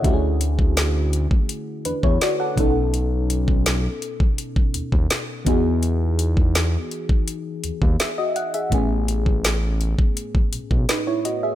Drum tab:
HH |x-x-x-x-x-x-x-x-|x-x-x-x-x-x-x-x-|x-x-x-x-x-x-x-xx|x-x-x-x-x-x-x-x-|
SD |----o-------o---|----o-------o---|----o-------o---|----o-------o---|
BD |o--o---o---o--o-|---o---o-o-o--o-|---o---o---o----|o--o---o-o-o----|